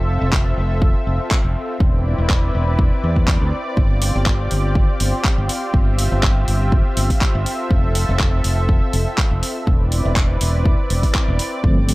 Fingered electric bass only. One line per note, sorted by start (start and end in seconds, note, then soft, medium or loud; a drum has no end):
0.00 0.18 F1 medium
0.21 0.55 F1 medium
0.57 0.92 F1 medium
1.07 1.18 F1 medium
1.45 1.54 F1 medium
1.80 2.15 E1 medium
2.18 2.52 E1 medium
2.55 2.89 E1 medium
3.04 3.38 E2 medium
3.41 3.51 D2 medium
3.77 4.12 G1 medium
4.15 4.48 G1 medium
4.52 4.86 G1 medium
5.00 5.11 G1 medium
5.38 5.48 G1 medium
5.74 6.08 G1 medium
6.12 6.45 G1 medium
6.48 6.82 G1 medium
6.97 7.08 G1 medium
7.35 7.44 G1 medium
7.71 8.05 F1 medium
8.09 8.42 F1 loud
8.45 8.79 F1 medium
8.93 9.05 F1 medium
9.31 9.41 F1 medium
9.67 10.02 E1 medium
10.05 10.38 E1 medium
10.41 10.76 E1 medium
10.79 muted fingered electric bass stroke soft
10.90 11.01 E1 medium
11.28 11.38 E1 medium
11.64 11.94 G1 medium